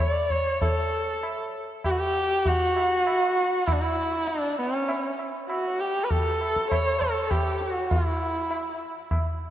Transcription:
0.00 0.32 D5 medium
0.30 0.61 C#5 medium
0.30 tabla ge medium
0.62 1.49 A4 medium
0.62 tabla tin loud
0.62 tabla ge medium
1.23 tabla na medium
1.84 1.92 G4 medium
1.84 tabla na medium
1.84 tabla ge medium
1.91 2.00 F#4 medium
1.98 2.49 G4 loud
2.46 3.69 F#4 loud
2.46 tabla tin medium
2.46 tabla ge medium
2.76 tabla na medium
3.07 tabla na medium
3.67 3.75 E4 medium
3.67 tabla na medium
3.67 tabla ge medium
3.73 3.82 D4 medium
3.81 4.29 E4 medium
4.28 4.57 D4 medium
4.28 tabla tin medium
4.58 5.15 C#4 medium
4.89 tabla na medium
5.19 tabla na medium
5.49 5.81 F#4 medium
5.49 tabla na medium
5.80 6.05 G4 medium
6.04 6.12 B4 medium
6.10 6.70 A4 medium
6.10 tabla tin medium
6.10 tabla ge medium
6.41 tabla na medium
6.56 tabla ke medium
6.71 7.02 C#5 medium
6.71 tabla na medium
6.71 tabla ge medium
7.01 7.32 A4 medium
7.01 tabla ge medium
7.31 7.63 G4 medium
7.31 tabla na medium
7.31 tabla ge medium
7.61 7.93 F#4 medium
7.61 tabla te medium
7.91 8.81 E4 medium
7.91 tabla tin loud
7.91 tabla ge medium
8.51 tabla na medium
9.11 tabla na medium
9.11 tabla ge medium

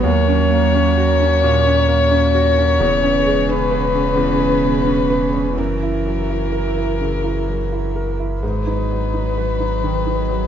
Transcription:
0.00 1.39 D#2 medium
0.00 2.77 F#3 medium
0.00 2.76 F#4 medium
0.00 5.57 C#5 medium
0.04 2.82 D#2 medium
0.04 2.81 A#3 medium
0.04 3.51 C#5 medium
0.28 0.65 C#4 medium
0.51 0.88 A#3 medium
0.75 1.11 C#4 medium
0.97 1.34 F#4 medium
1.20 1.57 C#4 medium
1.43 1.80 A#2 medium
1.66 2.03 C#4 medium
1.88 2.25 A#3 medium
2.11 2.48 C#4 medium
2.35 2.71 F#4 medium
2.58 2.81 C#4 medium
2.80 5.59 E1 medium
2.80 4.14 E2 medium
2.80 5.55 C#3 medium
2.80 5.58 B3 medium
2.80 5.58 G#4 medium
3.03 3.40 C#4 medium
3.27 3.63 G#3 medium
3.49 3.85 C#4 medium
3.49 5.61 B4 medium
3.71 4.08 B4 medium
3.94 4.31 C#4 medium
4.16 5.53 E2 medium
4.40 4.78 G#3 soft
4.64 5.02 B2 soft
4.87 5.25 C#4 medium
5.10 5.48 B4 medium
5.35 5.58 C#4 soft
5.55 8.42 F#1 medium
5.55 6.96 F#2 soft
5.55 8.18 E3 medium
5.55 8.41 A#3 medium
5.55 10.47 F#4 medium
5.55 8.41 E5 medium
5.59 8.22 A#4 medium
5.83 6.20 E4 soft
6.06 6.43 F#3 soft
6.30 6.67 E4 soft
6.52 6.90 A#4 soft
6.77 7.15 E4 soft
7.00 7.38 C#3 soft
7.24 7.62 E4 soft
7.48 7.85 F#3 soft
7.73 8.10 E4 soft
7.96 8.33 A#4 soft
8.20 8.43 E4 soft
8.41 10.47 G#1 medium
8.41 9.79 G#2 medium
8.41 10.47 F#3 medium
8.41 10.47 B3 soft
8.41 10.47 B4 medium
8.41 10.47 D#5 medium
8.67 9.04 D#4 soft
8.91 9.28 F#3 soft
9.14 9.51 D#4 soft
9.38 9.74 B4 soft
9.60 9.97 D#4 soft
9.84 10.20 D#3 medium
10.07 10.43 D#4 soft
10.29 10.47 F#3 soft

